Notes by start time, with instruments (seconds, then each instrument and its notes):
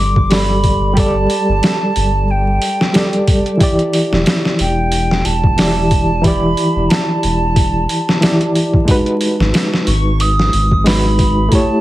Already playing: sub bass G1, reed electric piano G3 G4 A4 D5, flute D6
0.16 kick
0.30 reed electric piano G3 G4 A4 D5, flute B5, snare, open hi-hat
0.64 kick, open hi-hat
0.93 reed electric piano G3 G4 A4, kick, open hi-hat
0.98 reed electric piano D5, flute A5
1.30 open hi-hat
1.48 sub bass G1
1.63 snare, open hi-hat
1.96 sub bass G1, open hi-hat
2.30 flute G5
2.62 open hi-hat
2.81 snare
2.93 reed electric piano G3 G4 A4 D5, snare, open hi-hat
3.13 closed hi-hat
3.27 kick, open hi-hat
3.46 closed hi-hat
3.57 reed electric piano E3 E4 G4, kick, open hi-hat
3.63 reed electric piano D5
3.79 closed hi-hat
3.93 open hi-hat
4.12 sub bass E1, snare
4.26 snare, open hi-hat
4.45 snare
4.59 sub bass E1, flute G5, open hi-hat
4.92 open hi-hat
5.11 snare
5.25 sub bass E1, flute A5, open hi-hat
5.44 kick
5.57 reed electric piano E3 E4 G4 D5, snare, open hi-hat
5.91 kick, open hi-hat
6.21 reed electric piano E3 E4 G4, flute B5, kick, open hi-hat
6.28 reed electric piano D5
6.57 open hi-hat
6.75 sub bass E1
6.89 flute A5, snare, open hi-hat
7.23 sub bass E1, open hi-hat
7.56 kick, open hi-hat
7.89 open hi-hat
8.09 snare
8.20 reed electric piano E3 E4 G4 D5, snare, open hi-hat
8.41 closed hi-hat
8.55 open hi-hat
8.74 kick
8.85 reed electric piano G#3 D#4 F#4, kick, open hi-hat
8.91 reed electric piano B4
9.06 closed hi-hat
9.21 open hi-hat
9.39 sub bass G#1, snare
9.54 snare, open hi-hat
9.74 snare
9.87 sub bass G#1, flute C#6, open hi-hat
10.20 flute D#6, open hi-hat
10.39 snare
10.53 sub bass G#1, open hi-hat
10.71 kick
10.84 reed electric piano G#3 D#4 F#4 B4, flute B5, snare, open hi-hat
11.19 kick, open hi-hat
11.49 reed electric piano A3 E4, flute A5, kick, open hi-hat
11.53 reed electric piano G4 C#5